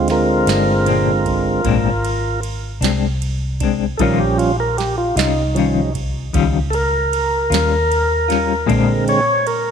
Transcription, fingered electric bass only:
Already playing: D2
0.47 G1
1.64 G#1
2.81 C2
3.99 A#1
5.16 C2
6.34 C#2
7.50 D#2
8.69 A#2

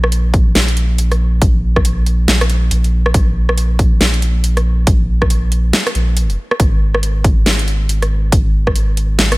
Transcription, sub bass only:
Already playing: A#1
0.55 A#1
1.42 A#1
2.28 A#1
2.71 A#1
3.14 A#1
4.01 A#1
4.87 A#1
5.95 A#1
6.60 G#1
7.46 G#1
8.32 G#1
9.19 G#1

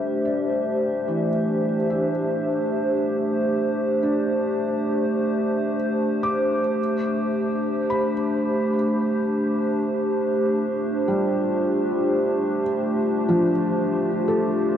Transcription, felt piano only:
Already playing: G3 A4
0.25 D5
1.08 E3
1.90 E5
4.03 D4
6.23 D6
7.90 B5
11.08 G3
13.29 F3
14.28 A4

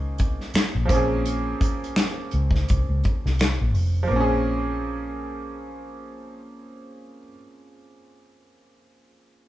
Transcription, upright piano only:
Already playing: F3 A#3 C#4 D#4 G#4
0.86 F3 A#3
0.90 C4 C#4
0.95 G#4
4.03 F3
4.07 A#3
4.12 C4
4.16 C#4
4.21 G#4

